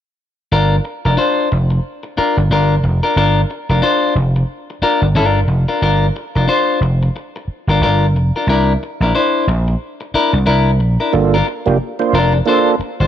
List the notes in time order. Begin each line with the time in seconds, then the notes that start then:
0.52 G1 D4 F4 A#4
0.85 muted clean electric guitar stroke
1.05 F1 D4 F4 A#4
1.17 D4 F4 C5
1.52 F1, muted clean electric guitar stroke
1.71 muted clean electric guitar stroke
2.03 muted clean electric guitar stroke
2.17 D4 F4 A#4, muted slap bass stroke
2.37 G1, muted clean electric guitar stroke
2.50 G1 D4 F4 A#4
2.84 F1, muted clean electric guitar stroke
3.03 D4 F4 A#4
3.16 G1 D4 F4 A#4
3.50 muted clean electric guitar stroke
3.69 F1 D4 F4 A#4
3.82 D4 F4 C5
4.15 F1, muted clean electric guitar stroke
4.36 muted clean electric guitar stroke
4.70 muted clean electric guitar stroke
4.82 D4 F4 A#4, muted slap bass stroke
5.02 G1, muted clean electric guitar stroke
5.15 G1 D4 F4 A#4
5.48 F1, muted clean electric guitar stroke
5.68 D4 F4 A#4
5.82 G1 D4 F4 A#4
6.16 muted clean electric guitar stroke
6.35 F1 D4 F4 A#4
6.48 D4 F4 C5
6.81 F1, muted clean electric guitar stroke
7.03 muted clean electric guitar stroke
7.16 muted clean electric guitar stroke
7.36 muted clean electric guitar stroke
7.48 muted slap bass stroke
7.67 G1 D4 F4 A#4
7.81 G1 D4 F4 A#4
8.14 F1, muted clean electric guitar stroke
8.36 D4 F4 A#4
8.47 C2 D4 E4 A#4
8.83 muted clean electric guitar stroke
9.00 A#1 D4 E4 A#4
9.15 D4 E4 C5
9.47 A#1, muted clean electric guitar stroke
9.68 muted clean electric guitar stroke
10.01 muted clean electric guitar stroke
10.14 D4 E4 A#4, muted slap bass stroke
10.33 C2, muted clean electric guitar stroke
10.46 C2 D4 E4 A#4
10.80 A#1, muted clean electric guitar stroke
11.00 D4 E4 A#4
11.13 G1 A#3 D4 F4 A4
11.34 D4 F4 A#4
11.47 muted clean electric guitar stroke
11.66 F1 A#3 D4 F4 G4, muted clean electric guitar stroke
11.99 A#3 D4 F4 C5, muted clean electric guitar stroke
12.13 F1 D4 F4 A#4
12.34 muted clean electric guitar stroke
12.45 A#3 D4 F4 A4 C5
12.79 muted slap bass stroke, muted clean electric guitar stroke
13.00 G1 D4 F4 C5